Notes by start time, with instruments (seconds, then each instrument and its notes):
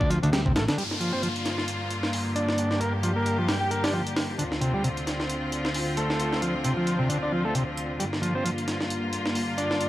Already playing: picked electric bass D2
0.00 transistor combo organ D4, kick
0.10 transistor combo organ F3, closed hi-hat
0.23 picked electric bass D2, transistor combo organ D3, closed hi-hat
0.32 transistor combo organ G3, snare, closed hi-hat
0.45 transistor combo organ C3, kick
0.56 picked electric bass A1, transistor combo organ A3, snare, closed hi-hat
0.68 transistor combo organ D3, snare, closed hi-hat
0.78 string section G2 D3 A#3 F4, transistor combo organ G3, closed hi-hat, downlifter
0.91 snare
1.00 transistor combo organ F3, closed hi-hat
1.13 transistor combo organ C4
1.23 transistor combo organ F3, closed hi-hat
1.36 closed hi-hat
1.46 snare, closed hi-hat
1.58 snare
1.68 closed hi-hat
1.90 closed hi-hat
2.03 snare
2.13 open hi-hat
2.35 transistor combo organ D4, closed hi-hat
2.49 snare
2.58 string section G4, closed hi-hat
2.71 snare
2.80 transistor combo organ A#3, closed hi-hat
3.03 transistor combo organ F3, closed hi-hat
3.16 transistor combo organ A#3
3.26 closed hi-hat
3.38 transistor combo organ F3
3.48 transistor combo organ G3, snare, open hi-hat
3.61 transistor combo organ G4
3.71 transistor combo organ A#3, closed hi-hat
3.84 transistor combo organ D4, snare, open hi-hat
3.93 transistor combo organ F3
4.07 closed hi-hat
4.16 snare, open hi-hat
4.38 string section D2 C4 F4, transistor combo organ D3, closed hi-hat
4.52 snare
4.61 transistor combo organ C3, closed hi-hat
4.74 transistor combo organ G3
4.84 transistor combo organ C3, closed hi-hat
4.97 closed hi-hat
5.07 snare, closed hi-hat
5.20 snare
5.30 closed hi-hat
5.52 closed hi-hat
5.65 snare
5.74 open hi-hat
5.97 transistor combo organ A3, closed hi-hat
6.10 snare
6.20 closed hi-hat
6.33 snare
6.42 transistor combo organ F3, closed hi-hat
6.64 transistor combo organ C3, closed hi-hat
6.77 transistor combo organ F3
6.87 closed hi-hat
6.99 transistor combo organ C3
7.09 transistor combo organ D3, closed hi-hat
7.23 transistor combo organ D4
7.32 transistor combo organ F3
7.45 transistor combo organ A3
7.55 transistor combo organ C3, closed hi-hat
7.77 closed hi-hat
7.99 string section G2 A#3 F4, transistor combo organ G3, closed hi-hat
8.13 snare
8.22 transistor combo organ F3, closed hi-hat
8.35 transistor combo organ C4
8.45 transistor combo organ F3, closed hi-hat
8.58 closed hi-hat
8.68 snare, closed hi-hat
8.81 snare
8.90 closed hi-hat
9.13 closed hi-hat
9.26 snare
9.35 open hi-hat
9.58 transistor combo organ D4, closed hi-hat
9.71 snare
9.81 closed hi-hat